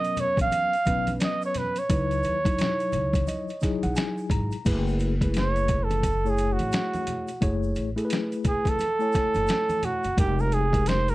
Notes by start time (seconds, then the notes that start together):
Already playing: F#3 B3 C#4 A#4 D#5
0.04 closed hi-hat, shaker
0.17 C#5, closed hi-hat, low conga, shaker
0.37 A#1, kick, closed hi-hat, high conga, shaker
0.42 F5
0.52 closed hi-hat, high conga, shaker
0.73 closed hi-hat, shaker
0.85 B1 F#3 B3 C#4 B4, kick, closed hi-hat, shaker
1.07 closed hi-hat, high conga, shaker
1.20 D5 D#5, snare, closed hi-hat, shaker
1.42 C#5, shaker
1.54 B4, snare, closed hi-hat, high conga, low conga, shaker
1.76 C#5, closed hi-hat, shaker
1.89 C#2 F#3 D#4 E4 B4, kick, closed hi-hat, shaker
2.11 closed hi-hat, shaker
2.23 D#2, closed hi-hat, shaker
2.45 F#3 D#4 E4 C#5, kick, closed hi-hat, shaker
2.59 snare, closed hi-hat, low conga, shaker
2.80 closed hi-hat, shaker
2.92 C#2 C#5, closed hi-hat, low conga, shaker
3.13 kick, closed hi-hat, high conga, shaker
3.27 D#5, closed hi-hat, high conga, shaker
3.49 closed hi-hat, shaker
3.61 F#3 D#4 E4 G#4, kick, snare, closed hi-hat, shaker
3.83 B1 F#5, closed hi-hat, high conga, shaker
3.95 G#5, snare, closed hi-hat, shaker
4.18 shaker
4.30 G#1 A#5, kick, closed hi-hat, high conga, low conga, shaker
4.51 closed hi-hat, shaker
4.65 F#1 A3 E4 G#4 B4, kick, closed hi-hat, crash, shaker
4.87 shaker
4.99 closed hi-hat, shaker
5.21 G#3 E4 G#4 B4, kick, closed hi-hat, shaker
5.28 A3
5.34 snare, closed hi-hat, shaker
5.38 C#5
5.56 closed hi-hat, shaker
5.68 kick, closed hi-hat, low conga, shaker
5.84 A4
5.91 closed hi-hat, high conga, shaker
6.03 kick, closed hi-hat, high conga, shaker
6.24 A3 E4 G#4 C#5, shaker
6.30 G#4
6.38 closed hi-hat, shaker
6.53 F#4
6.59 A1, closed hi-hat, high conga, shaker
6.72 snare, closed hi-hat, shaker
6.94 closed hi-hat, high conga, shaker
7.07 closed hi-hat, high conga, low conga, shaker
7.28 closed hi-hat, shaker
7.41 F#1 A3 E4 G#4 C#5, kick, closed hi-hat, shaker
7.63 shaker
7.75 A1, closed hi-hat, shaker
7.96 A3 E4 G#4 A4, closed hi-hat, shaker
8.05 B4
8.10 snare, closed hi-hat, shaker
8.32 closed hi-hat, shaker
8.44 G#4, kick, closed hi-hat, low conga, shaker
8.65 A4, kick, closed hi-hat, high conga, shaker
8.79 closed hi-hat, high conga, shaker
8.99 A3 E4 C#5 G#5, shaker
9.12 kick, snare, closed hi-hat, shaker
9.35 F#1, closed hi-hat, high conga, shaker
9.47 snare, closed hi-hat, shaker
9.69 closed hi-hat, high conga, shaker
9.83 F#4, closed hi-hat, high conga, low conga, shaker
10.03 F#1, closed hi-hat, shaker
10.17 F1 G#3 D#4 G4 A#4, kick, closed hi-hat, shaker
10.39 A#4, shaker
10.51 G#4, closed hi-hat, shaker
10.72 G#3 D#4 G4 A#4, kick, closed hi-hat, shaker
10.86 C5, snare, closed hi-hat, shaker
11.08 A#4, closed hi-hat, shaker